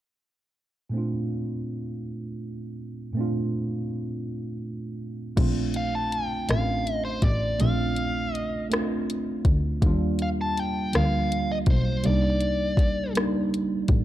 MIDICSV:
0, 0, Header, 1, 5, 480
1, 0, Start_track
1, 0, Key_signature, -2, "major"
1, 0, Tempo, 740741
1, 601, Time_signature, 6, 3, 24, 8
1, 9101, End_track
2, 0, Start_track
2, 0, Title_t, "Lead electric guitar"
2, 0, Program_c, 0, 29
2, 3735, Note_on_c, 0, 77, 75
2, 3852, Note_off_c, 0, 77, 0
2, 3856, Note_on_c, 0, 81, 74
2, 3969, Note_off_c, 0, 81, 0
2, 3969, Note_on_c, 0, 79, 77
2, 4205, Note_off_c, 0, 79, 0
2, 4208, Note_on_c, 0, 77, 81
2, 4493, Note_off_c, 0, 77, 0
2, 4493, Note_on_c, 0, 75, 81
2, 4564, Note_off_c, 0, 75, 0
2, 4567, Note_on_c, 0, 72, 68
2, 4685, Note_off_c, 0, 72, 0
2, 4685, Note_on_c, 0, 74, 78
2, 4929, Note_on_c, 0, 77, 72
2, 4930, Note_off_c, 0, 74, 0
2, 5408, Note_off_c, 0, 77, 0
2, 5408, Note_on_c, 0, 75, 72
2, 5619, Note_off_c, 0, 75, 0
2, 6624, Note_on_c, 0, 77, 75
2, 6656, Note_off_c, 0, 77, 0
2, 6748, Note_on_c, 0, 81, 78
2, 6865, Note_off_c, 0, 81, 0
2, 6865, Note_on_c, 0, 79, 80
2, 7100, Note_off_c, 0, 79, 0
2, 7102, Note_on_c, 0, 77, 76
2, 7462, Note_off_c, 0, 77, 0
2, 7462, Note_on_c, 0, 75, 74
2, 7495, Note_off_c, 0, 75, 0
2, 7584, Note_on_c, 0, 72, 75
2, 7813, Note_off_c, 0, 72, 0
2, 7820, Note_on_c, 0, 74, 73
2, 8505, Note_off_c, 0, 74, 0
2, 9101, End_track
3, 0, Start_track
3, 0, Title_t, "Tine electric piano"
3, 0, Program_c, 1, 4
3, 580, Note_on_c, 1, 46, 59
3, 593, Note_on_c, 1, 57, 50
3, 607, Note_on_c, 1, 60, 53
3, 623, Note_on_c, 1, 62, 50
3, 633, Note_on_c, 1, 65, 63
3, 730, Control_c, 1, 64, 127
3, 2005, Note_off_c, 1, 46, 0
3, 2011, Note_off_c, 1, 57, 0
3, 2018, Note_off_c, 1, 60, 0
3, 2025, Note_on_c, 1, 46, 57
3, 2026, Note_off_c, 1, 62, 0
3, 2031, Note_off_c, 1, 65, 0
3, 2039, Note_on_c, 1, 57, 56
3, 2053, Note_on_c, 1, 60, 55
3, 2065, Note_on_c, 1, 62, 55
3, 2078, Note_on_c, 1, 65, 68
3, 3448, Note_off_c, 1, 46, 0
3, 3454, Note_off_c, 1, 57, 0
3, 3461, Note_off_c, 1, 60, 0
3, 3467, Note_off_c, 1, 62, 0
3, 3474, Note_off_c, 1, 65, 0
3, 3475, Note_on_c, 1, 57, 76
3, 3484, Note_on_c, 1, 60, 76
3, 3489, Control_c, 1, 64, 0
3, 3492, Note_on_c, 1, 62, 70
3, 3502, Note_on_c, 1, 65, 89
3, 3602, Control_c, 1, 64, 127
3, 3988, Note_off_c, 1, 57, 0
3, 3993, Note_off_c, 1, 60, 0
3, 3997, Note_off_c, 1, 62, 0
3, 4002, Note_off_c, 1, 65, 0
3, 4199, Note_on_c, 1, 57, 52
3, 4210, Note_on_c, 1, 60, 46
3, 4217, Note_on_c, 1, 61, 38
3, 4227, Note_on_c, 1, 65, 55
3, 4251, Note_off_c, 1, 61, 0
3, 4260, Note_on_c, 1, 62, 44
3, 4710, Note_off_c, 1, 57, 0
3, 4716, Note_off_c, 1, 60, 0
3, 4724, Note_off_c, 1, 65, 0
3, 4741, Note_off_c, 1, 62, 0
3, 4916, Note_on_c, 1, 57, 68
3, 4924, Note_on_c, 1, 60, 64
3, 4933, Note_on_c, 1, 62, 62
3, 4943, Note_on_c, 1, 65, 72
3, 5429, Note_off_c, 1, 57, 0
3, 5433, Note_off_c, 1, 60, 0
3, 5438, Note_off_c, 1, 62, 0
3, 5442, Note_off_c, 1, 65, 0
3, 5637, Note_on_c, 1, 57, 65
3, 5646, Note_on_c, 1, 60, 57
3, 5655, Note_on_c, 1, 62, 59
3, 5664, Note_on_c, 1, 65, 71
3, 6150, Note_off_c, 1, 57, 0
3, 6154, Note_off_c, 1, 60, 0
3, 6159, Note_off_c, 1, 62, 0
3, 6163, Note_off_c, 1, 65, 0
3, 6361, Note_on_c, 1, 55, 87
3, 6369, Control_c, 1, 64, 0
3, 6371, Note_on_c, 1, 58, 75
3, 6382, Note_on_c, 1, 62, 76
3, 6389, Note_on_c, 1, 65, 89
3, 6495, Control_c, 1, 64, 127
3, 6871, Note_off_c, 1, 55, 0
3, 6876, Note_off_c, 1, 58, 0
3, 6882, Note_off_c, 1, 62, 0
3, 6885, Note_off_c, 1, 65, 0
3, 7076, Note_on_c, 1, 53, 39
3, 7084, Note_on_c, 1, 58, 48
3, 7094, Note_on_c, 1, 62, 49
3, 7103, Note_on_c, 1, 65, 65
3, 7119, Note_on_c, 1, 55, 54
3, 7121, Note_off_c, 1, 53, 0
3, 7593, Note_off_c, 1, 58, 0
3, 7598, Note_off_c, 1, 62, 0
3, 7602, Note_off_c, 1, 65, 0
3, 7610, Note_off_c, 1, 55, 0
3, 7794, Note_on_c, 1, 55, 69
3, 7806, Note_on_c, 1, 58, 61
3, 7809, Control_c, 1, 64, 0
3, 7814, Note_on_c, 1, 62, 64
3, 7823, Note_on_c, 1, 63, 80
3, 7940, Control_c, 1, 64, 127
3, 8308, Note_off_c, 1, 55, 0
3, 8314, Note_off_c, 1, 58, 0
3, 8318, Note_off_c, 1, 62, 0
3, 8322, Note_off_c, 1, 63, 0
3, 8513, Note_on_c, 1, 55, 65
3, 8523, Note_on_c, 1, 58, 56
3, 8533, Note_on_c, 1, 62, 54
3, 8542, Note_on_c, 1, 63, 73
3, 9028, Note_off_c, 1, 55, 0
3, 9033, Note_off_c, 1, 58, 0
3, 9038, Note_off_c, 1, 62, 0
3, 9042, Note_off_c, 1, 63, 0
3, 9101, End_track
4, 0, Start_track
4, 0, Title_t, "Double bass"
4, 0, Program_c, 2, 43
4, 3486, Note_on_c, 2, 34, 93
4, 4178, Note_off_c, 2, 34, 0
4, 4207, Note_on_c, 2, 33, 73
4, 4658, Note_off_c, 2, 33, 0
4, 4684, Note_on_c, 2, 33, 77
4, 4899, Note_off_c, 2, 33, 0
4, 4927, Note_on_c, 2, 34, 85
4, 6099, Note_off_c, 2, 34, 0
4, 6128, Note_on_c, 2, 38, 78
4, 6341, Note_off_c, 2, 38, 0
4, 6369, Note_on_c, 2, 39, 92
4, 7059, Note_off_c, 2, 39, 0
4, 7093, Note_on_c, 2, 38, 81
4, 7541, Note_off_c, 2, 38, 0
4, 7566, Note_on_c, 2, 35, 83
4, 7780, Note_off_c, 2, 35, 0
4, 7809, Note_on_c, 2, 36, 93
4, 8980, Note_off_c, 2, 36, 0
4, 9005, Note_on_c, 2, 33, 69
4, 9101, Note_off_c, 2, 33, 0
4, 9101, End_track
5, 0, Start_track
5, 0, Title_t, "Drums"
5, 3481, Note_on_c, 9, 36, 88
5, 3481, Note_on_c, 9, 49, 74
5, 3482, Note_on_c, 9, 42, 54
5, 3546, Note_off_c, 9, 36, 0
5, 3546, Note_off_c, 9, 49, 0
5, 3547, Note_off_c, 9, 42, 0
5, 3720, Note_on_c, 9, 42, 43
5, 3785, Note_off_c, 9, 42, 0
5, 3968, Note_on_c, 9, 42, 35
5, 4033, Note_off_c, 9, 42, 0
5, 4203, Note_on_c, 9, 42, 56
5, 4215, Note_on_c, 9, 37, 88
5, 4268, Note_off_c, 9, 42, 0
5, 4280, Note_off_c, 9, 37, 0
5, 4451, Note_on_c, 9, 42, 45
5, 4516, Note_off_c, 9, 42, 0
5, 4679, Note_on_c, 9, 42, 39
5, 4680, Note_on_c, 9, 36, 73
5, 4744, Note_off_c, 9, 42, 0
5, 4745, Note_off_c, 9, 36, 0
5, 4922, Note_on_c, 9, 42, 53
5, 4987, Note_off_c, 9, 42, 0
5, 5161, Note_on_c, 9, 42, 44
5, 5226, Note_off_c, 9, 42, 0
5, 5411, Note_on_c, 9, 42, 35
5, 5476, Note_off_c, 9, 42, 0
5, 5648, Note_on_c, 9, 42, 55
5, 5660, Note_on_c, 9, 37, 95
5, 5713, Note_off_c, 9, 42, 0
5, 5725, Note_off_c, 9, 37, 0
5, 5895, Note_on_c, 9, 42, 44
5, 5960, Note_off_c, 9, 42, 0
5, 6123, Note_on_c, 9, 36, 76
5, 6123, Note_on_c, 9, 42, 43
5, 6188, Note_off_c, 9, 36, 0
5, 6188, Note_off_c, 9, 42, 0
5, 6364, Note_on_c, 9, 36, 94
5, 6365, Note_on_c, 9, 42, 54
5, 6429, Note_off_c, 9, 36, 0
5, 6430, Note_off_c, 9, 42, 0
5, 6602, Note_on_c, 9, 42, 39
5, 6667, Note_off_c, 9, 42, 0
5, 6853, Note_on_c, 9, 42, 39
5, 6917, Note_off_c, 9, 42, 0
5, 7085, Note_on_c, 9, 42, 58
5, 7097, Note_on_c, 9, 37, 95
5, 7149, Note_off_c, 9, 42, 0
5, 7161, Note_off_c, 9, 37, 0
5, 7335, Note_on_c, 9, 42, 47
5, 7399, Note_off_c, 9, 42, 0
5, 7558, Note_on_c, 9, 42, 44
5, 7561, Note_on_c, 9, 36, 85
5, 7622, Note_off_c, 9, 42, 0
5, 7626, Note_off_c, 9, 36, 0
5, 7800, Note_on_c, 9, 42, 54
5, 7865, Note_off_c, 9, 42, 0
5, 8039, Note_on_c, 9, 42, 43
5, 8103, Note_off_c, 9, 42, 0
5, 8277, Note_on_c, 9, 36, 78
5, 8287, Note_on_c, 9, 42, 38
5, 8341, Note_off_c, 9, 36, 0
5, 8352, Note_off_c, 9, 42, 0
5, 8524, Note_on_c, 9, 42, 61
5, 8536, Note_on_c, 9, 37, 98
5, 8588, Note_off_c, 9, 42, 0
5, 8600, Note_off_c, 9, 37, 0
5, 8774, Note_on_c, 9, 42, 46
5, 8838, Note_off_c, 9, 42, 0
5, 8996, Note_on_c, 9, 42, 41
5, 8999, Note_on_c, 9, 36, 81
5, 9060, Note_off_c, 9, 42, 0
5, 9064, Note_off_c, 9, 36, 0
5, 9101, End_track
0, 0, End_of_file